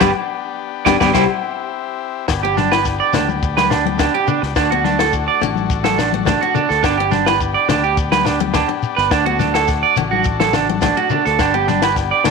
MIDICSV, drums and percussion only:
0, 0, Header, 1, 3, 480
1, 0, Start_track
1, 0, Key_signature, 1, "major"
1, 0, Tempo, 569260
1, 10, Time_signature, 4, 2, 24, 8
1, 10376, End_track
2, 0, Start_track
2, 0, Title_t, "Shekere"
2, 8, Note_on_c, 9, 82, 93
2, 92, Note_off_c, 9, 82, 0
2, 730, Note_on_c, 9, 82, 98
2, 815, Note_off_c, 9, 82, 0
2, 857, Note_on_c, 9, 82, 101
2, 941, Note_off_c, 9, 82, 0
2, 967, Note_on_c, 9, 82, 100
2, 1051, Note_off_c, 9, 82, 0
2, 1929, Note_on_c, 9, 82, 66
2, 2014, Note_off_c, 9, 82, 0
2, 2168, Note_on_c, 9, 82, 80
2, 2252, Note_off_c, 9, 82, 0
2, 2289, Note_on_c, 9, 82, 23
2, 2373, Note_off_c, 9, 82, 0
2, 2402, Note_on_c, 9, 82, 73
2, 2486, Note_off_c, 9, 82, 0
2, 2640, Note_on_c, 9, 82, 86
2, 2724, Note_off_c, 9, 82, 0
2, 2774, Note_on_c, 9, 82, 27
2, 2858, Note_off_c, 9, 82, 0
2, 2892, Note_on_c, 9, 82, 69
2, 2976, Note_off_c, 9, 82, 0
2, 3129, Note_on_c, 9, 82, 87
2, 3213, Note_off_c, 9, 82, 0
2, 3364, Note_on_c, 9, 82, 71
2, 3448, Note_off_c, 9, 82, 0
2, 3605, Note_on_c, 9, 82, 92
2, 3689, Note_off_c, 9, 82, 0
2, 3738, Note_on_c, 9, 82, 29
2, 3823, Note_off_c, 9, 82, 0
2, 3841, Note_on_c, 9, 82, 65
2, 3926, Note_off_c, 9, 82, 0
2, 4216, Note_on_c, 9, 82, 26
2, 4300, Note_off_c, 9, 82, 0
2, 4324, Note_on_c, 9, 82, 70
2, 4408, Note_off_c, 9, 82, 0
2, 4573, Note_on_c, 9, 82, 85
2, 4657, Note_off_c, 9, 82, 0
2, 4696, Note_on_c, 9, 82, 25
2, 4780, Note_off_c, 9, 82, 0
2, 4812, Note_on_c, 9, 82, 64
2, 4897, Note_off_c, 9, 82, 0
2, 5047, Note_on_c, 9, 82, 83
2, 5131, Note_off_c, 9, 82, 0
2, 5290, Note_on_c, 9, 82, 66
2, 5374, Note_off_c, 9, 82, 0
2, 5523, Note_on_c, 9, 82, 85
2, 5607, Note_off_c, 9, 82, 0
2, 5646, Note_on_c, 9, 82, 26
2, 5730, Note_off_c, 9, 82, 0
2, 5766, Note_on_c, 9, 82, 59
2, 5850, Note_off_c, 9, 82, 0
2, 6000, Note_on_c, 9, 82, 85
2, 6084, Note_off_c, 9, 82, 0
2, 6134, Note_on_c, 9, 82, 22
2, 6218, Note_off_c, 9, 82, 0
2, 6248, Note_on_c, 9, 82, 63
2, 6332, Note_off_c, 9, 82, 0
2, 6485, Note_on_c, 9, 82, 82
2, 6569, Note_off_c, 9, 82, 0
2, 6608, Note_on_c, 9, 82, 28
2, 6692, Note_off_c, 9, 82, 0
2, 6724, Note_on_c, 9, 82, 66
2, 6808, Note_off_c, 9, 82, 0
2, 6965, Note_on_c, 9, 82, 87
2, 7050, Note_off_c, 9, 82, 0
2, 7203, Note_on_c, 9, 82, 71
2, 7288, Note_off_c, 9, 82, 0
2, 7442, Note_on_c, 9, 82, 90
2, 7526, Note_off_c, 9, 82, 0
2, 7573, Note_on_c, 9, 82, 28
2, 7657, Note_off_c, 9, 82, 0
2, 7685, Note_on_c, 9, 82, 69
2, 7769, Note_off_c, 9, 82, 0
2, 7921, Note_on_c, 9, 82, 93
2, 8005, Note_off_c, 9, 82, 0
2, 8045, Note_on_c, 9, 82, 24
2, 8129, Note_off_c, 9, 82, 0
2, 8159, Note_on_c, 9, 82, 74
2, 8243, Note_off_c, 9, 82, 0
2, 8401, Note_on_c, 9, 82, 89
2, 8485, Note_off_c, 9, 82, 0
2, 8635, Note_on_c, 9, 82, 72
2, 8719, Note_off_c, 9, 82, 0
2, 8878, Note_on_c, 9, 82, 92
2, 8963, Note_off_c, 9, 82, 0
2, 9117, Note_on_c, 9, 82, 70
2, 9202, Note_off_c, 9, 82, 0
2, 9357, Note_on_c, 9, 82, 82
2, 9441, Note_off_c, 9, 82, 0
2, 9489, Note_on_c, 9, 82, 27
2, 9574, Note_off_c, 9, 82, 0
2, 9604, Note_on_c, 9, 82, 66
2, 9688, Note_off_c, 9, 82, 0
2, 9853, Note_on_c, 9, 82, 81
2, 9937, Note_off_c, 9, 82, 0
2, 9974, Note_on_c, 9, 82, 24
2, 10059, Note_off_c, 9, 82, 0
2, 10094, Note_on_c, 9, 82, 69
2, 10178, Note_off_c, 9, 82, 0
2, 10332, Note_on_c, 9, 82, 90
2, 10376, Note_off_c, 9, 82, 0
2, 10376, End_track
3, 0, Start_track
3, 0, Title_t, "Drums"
3, 4, Note_on_c, 9, 68, 109
3, 7, Note_on_c, 9, 38, 77
3, 8, Note_on_c, 9, 36, 85
3, 9, Note_on_c, 9, 63, 100
3, 89, Note_off_c, 9, 68, 0
3, 91, Note_off_c, 9, 38, 0
3, 92, Note_off_c, 9, 36, 0
3, 93, Note_off_c, 9, 63, 0
3, 726, Note_on_c, 9, 38, 68
3, 727, Note_on_c, 9, 36, 63
3, 727, Note_on_c, 9, 68, 97
3, 729, Note_on_c, 9, 63, 102
3, 810, Note_off_c, 9, 38, 0
3, 811, Note_off_c, 9, 36, 0
3, 812, Note_off_c, 9, 68, 0
3, 813, Note_off_c, 9, 63, 0
3, 849, Note_on_c, 9, 63, 103
3, 849, Note_on_c, 9, 68, 101
3, 852, Note_on_c, 9, 36, 77
3, 852, Note_on_c, 9, 38, 83
3, 933, Note_off_c, 9, 68, 0
3, 934, Note_off_c, 9, 63, 0
3, 936, Note_off_c, 9, 36, 0
3, 936, Note_off_c, 9, 38, 0
3, 965, Note_on_c, 9, 63, 100
3, 965, Note_on_c, 9, 68, 91
3, 967, Note_on_c, 9, 36, 79
3, 969, Note_on_c, 9, 38, 78
3, 1049, Note_off_c, 9, 63, 0
3, 1050, Note_off_c, 9, 68, 0
3, 1052, Note_off_c, 9, 36, 0
3, 1053, Note_off_c, 9, 38, 0
3, 1924, Note_on_c, 9, 68, 70
3, 1925, Note_on_c, 9, 38, 68
3, 1928, Note_on_c, 9, 36, 81
3, 2008, Note_off_c, 9, 68, 0
3, 2009, Note_off_c, 9, 38, 0
3, 2012, Note_off_c, 9, 36, 0
3, 2170, Note_on_c, 9, 38, 26
3, 2174, Note_on_c, 9, 63, 66
3, 2254, Note_off_c, 9, 38, 0
3, 2259, Note_off_c, 9, 63, 0
3, 2289, Note_on_c, 9, 68, 68
3, 2293, Note_on_c, 9, 38, 62
3, 2374, Note_off_c, 9, 68, 0
3, 2377, Note_off_c, 9, 38, 0
3, 2405, Note_on_c, 9, 38, 23
3, 2407, Note_on_c, 9, 36, 72
3, 2490, Note_off_c, 9, 38, 0
3, 2492, Note_off_c, 9, 36, 0
3, 2646, Note_on_c, 9, 64, 64
3, 2648, Note_on_c, 9, 38, 59
3, 2650, Note_on_c, 9, 68, 62
3, 2731, Note_off_c, 9, 64, 0
3, 2732, Note_off_c, 9, 38, 0
3, 2734, Note_off_c, 9, 68, 0
3, 2770, Note_on_c, 9, 63, 59
3, 2855, Note_off_c, 9, 63, 0
3, 2889, Note_on_c, 9, 36, 90
3, 2974, Note_off_c, 9, 36, 0
3, 3014, Note_on_c, 9, 38, 64
3, 3014, Note_on_c, 9, 63, 63
3, 3015, Note_on_c, 9, 68, 59
3, 3098, Note_off_c, 9, 38, 0
3, 3098, Note_off_c, 9, 63, 0
3, 3099, Note_off_c, 9, 68, 0
3, 3129, Note_on_c, 9, 38, 71
3, 3214, Note_off_c, 9, 38, 0
3, 3250, Note_on_c, 9, 63, 63
3, 3335, Note_off_c, 9, 63, 0
3, 3367, Note_on_c, 9, 68, 66
3, 3368, Note_on_c, 9, 36, 90
3, 3368, Note_on_c, 9, 38, 67
3, 3368, Note_on_c, 9, 64, 60
3, 3452, Note_off_c, 9, 38, 0
3, 3452, Note_off_c, 9, 64, 0
3, 3452, Note_off_c, 9, 68, 0
3, 3453, Note_off_c, 9, 36, 0
3, 3607, Note_on_c, 9, 64, 65
3, 3692, Note_off_c, 9, 64, 0
3, 3735, Note_on_c, 9, 38, 22
3, 3819, Note_off_c, 9, 38, 0
3, 3845, Note_on_c, 9, 38, 66
3, 3847, Note_on_c, 9, 36, 86
3, 3847, Note_on_c, 9, 68, 73
3, 3929, Note_off_c, 9, 38, 0
3, 3931, Note_off_c, 9, 36, 0
3, 3932, Note_off_c, 9, 68, 0
3, 4085, Note_on_c, 9, 38, 25
3, 4087, Note_on_c, 9, 63, 59
3, 4169, Note_off_c, 9, 38, 0
3, 4171, Note_off_c, 9, 63, 0
3, 4209, Note_on_c, 9, 38, 69
3, 4213, Note_on_c, 9, 68, 62
3, 4293, Note_off_c, 9, 38, 0
3, 4297, Note_off_c, 9, 68, 0
3, 4327, Note_on_c, 9, 36, 75
3, 4411, Note_off_c, 9, 36, 0
3, 4565, Note_on_c, 9, 64, 66
3, 4568, Note_on_c, 9, 68, 61
3, 4649, Note_off_c, 9, 64, 0
3, 4652, Note_off_c, 9, 68, 0
3, 4683, Note_on_c, 9, 63, 53
3, 4767, Note_off_c, 9, 63, 0
3, 4806, Note_on_c, 9, 36, 93
3, 4890, Note_off_c, 9, 36, 0
3, 4924, Note_on_c, 9, 63, 64
3, 4924, Note_on_c, 9, 68, 60
3, 4930, Note_on_c, 9, 38, 70
3, 5008, Note_off_c, 9, 63, 0
3, 5009, Note_off_c, 9, 68, 0
3, 5014, Note_off_c, 9, 38, 0
3, 5049, Note_on_c, 9, 38, 69
3, 5133, Note_off_c, 9, 38, 0
3, 5165, Note_on_c, 9, 63, 62
3, 5250, Note_off_c, 9, 63, 0
3, 5272, Note_on_c, 9, 64, 64
3, 5281, Note_on_c, 9, 68, 64
3, 5288, Note_on_c, 9, 36, 87
3, 5290, Note_on_c, 9, 38, 65
3, 5356, Note_off_c, 9, 64, 0
3, 5365, Note_off_c, 9, 68, 0
3, 5372, Note_off_c, 9, 36, 0
3, 5374, Note_off_c, 9, 38, 0
3, 5519, Note_on_c, 9, 64, 69
3, 5604, Note_off_c, 9, 64, 0
3, 5654, Note_on_c, 9, 38, 24
3, 5738, Note_off_c, 9, 38, 0
3, 5766, Note_on_c, 9, 36, 85
3, 5767, Note_on_c, 9, 38, 73
3, 5768, Note_on_c, 9, 68, 68
3, 5850, Note_off_c, 9, 36, 0
3, 5851, Note_off_c, 9, 38, 0
3, 5853, Note_off_c, 9, 68, 0
3, 5999, Note_on_c, 9, 63, 63
3, 6006, Note_on_c, 9, 38, 25
3, 6083, Note_off_c, 9, 63, 0
3, 6090, Note_off_c, 9, 38, 0
3, 6126, Note_on_c, 9, 38, 71
3, 6135, Note_on_c, 9, 68, 67
3, 6210, Note_off_c, 9, 38, 0
3, 6219, Note_off_c, 9, 68, 0
3, 6244, Note_on_c, 9, 36, 78
3, 6328, Note_off_c, 9, 36, 0
3, 6483, Note_on_c, 9, 38, 61
3, 6484, Note_on_c, 9, 64, 64
3, 6486, Note_on_c, 9, 68, 59
3, 6568, Note_off_c, 9, 38, 0
3, 6568, Note_off_c, 9, 64, 0
3, 6570, Note_off_c, 9, 68, 0
3, 6724, Note_on_c, 9, 36, 98
3, 6808, Note_off_c, 9, 36, 0
3, 6847, Note_on_c, 9, 38, 64
3, 6847, Note_on_c, 9, 68, 62
3, 6848, Note_on_c, 9, 63, 68
3, 6931, Note_off_c, 9, 38, 0
3, 6932, Note_off_c, 9, 63, 0
3, 6932, Note_off_c, 9, 68, 0
3, 6962, Note_on_c, 9, 38, 69
3, 7047, Note_off_c, 9, 38, 0
3, 7090, Note_on_c, 9, 63, 66
3, 7174, Note_off_c, 9, 63, 0
3, 7198, Note_on_c, 9, 38, 70
3, 7202, Note_on_c, 9, 64, 64
3, 7203, Note_on_c, 9, 36, 94
3, 7206, Note_on_c, 9, 68, 64
3, 7282, Note_off_c, 9, 38, 0
3, 7286, Note_off_c, 9, 64, 0
3, 7288, Note_off_c, 9, 36, 0
3, 7290, Note_off_c, 9, 68, 0
3, 7571, Note_on_c, 9, 38, 25
3, 7655, Note_off_c, 9, 38, 0
3, 7684, Note_on_c, 9, 38, 69
3, 7685, Note_on_c, 9, 36, 83
3, 7685, Note_on_c, 9, 68, 68
3, 7768, Note_off_c, 9, 38, 0
3, 7769, Note_off_c, 9, 36, 0
3, 7769, Note_off_c, 9, 68, 0
3, 7923, Note_on_c, 9, 38, 26
3, 7929, Note_on_c, 9, 63, 59
3, 8007, Note_off_c, 9, 38, 0
3, 8013, Note_off_c, 9, 63, 0
3, 8051, Note_on_c, 9, 38, 67
3, 8054, Note_on_c, 9, 68, 72
3, 8135, Note_off_c, 9, 38, 0
3, 8139, Note_off_c, 9, 68, 0
3, 8166, Note_on_c, 9, 36, 81
3, 8166, Note_on_c, 9, 38, 24
3, 8250, Note_off_c, 9, 38, 0
3, 8251, Note_off_c, 9, 36, 0
3, 8410, Note_on_c, 9, 64, 72
3, 8410, Note_on_c, 9, 68, 66
3, 8494, Note_off_c, 9, 64, 0
3, 8494, Note_off_c, 9, 68, 0
3, 8538, Note_on_c, 9, 63, 54
3, 8623, Note_off_c, 9, 63, 0
3, 8648, Note_on_c, 9, 36, 90
3, 8732, Note_off_c, 9, 36, 0
3, 8771, Note_on_c, 9, 38, 70
3, 8775, Note_on_c, 9, 63, 69
3, 8780, Note_on_c, 9, 68, 60
3, 8855, Note_off_c, 9, 38, 0
3, 8859, Note_off_c, 9, 63, 0
3, 8864, Note_off_c, 9, 68, 0
3, 8883, Note_on_c, 9, 38, 73
3, 8892, Note_on_c, 9, 64, 65
3, 8967, Note_off_c, 9, 38, 0
3, 8976, Note_off_c, 9, 64, 0
3, 9017, Note_on_c, 9, 63, 65
3, 9101, Note_off_c, 9, 63, 0
3, 9123, Note_on_c, 9, 38, 69
3, 9127, Note_on_c, 9, 36, 84
3, 9129, Note_on_c, 9, 68, 64
3, 9131, Note_on_c, 9, 64, 63
3, 9207, Note_off_c, 9, 38, 0
3, 9212, Note_off_c, 9, 36, 0
3, 9214, Note_off_c, 9, 68, 0
3, 9215, Note_off_c, 9, 64, 0
3, 9372, Note_on_c, 9, 64, 66
3, 9456, Note_off_c, 9, 64, 0
3, 9493, Note_on_c, 9, 38, 24
3, 9577, Note_off_c, 9, 38, 0
3, 9603, Note_on_c, 9, 38, 65
3, 9607, Note_on_c, 9, 36, 92
3, 9614, Note_on_c, 9, 68, 71
3, 9687, Note_off_c, 9, 38, 0
3, 9692, Note_off_c, 9, 36, 0
3, 9698, Note_off_c, 9, 68, 0
3, 9843, Note_on_c, 9, 38, 26
3, 9859, Note_on_c, 9, 63, 66
3, 9927, Note_off_c, 9, 38, 0
3, 9944, Note_off_c, 9, 63, 0
3, 9967, Note_on_c, 9, 38, 66
3, 9978, Note_on_c, 9, 68, 71
3, 10051, Note_off_c, 9, 38, 0
3, 10063, Note_off_c, 9, 68, 0
3, 10081, Note_on_c, 9, 38, 23
3, 10088, Note_on_c, 9, 36, 81
3, 10165, Note_off_c, 9, 38, 0
3, 10172, Note_off_c, 9, 36, 0
3, 10324, Note_on_c, 9, 38, 60
3, 10329, Note_on_c, 9, 68, 62
3, 10338, Note_on_c, 9, 64, 75
3, 10376, Note_off_c, 9, 38, 0
3, 10376, Note_off_c, 9, 64, 0
3, 10376, Note_off_c, 9, 68, 0
3, 10376, End_track
0, 0, End_of_file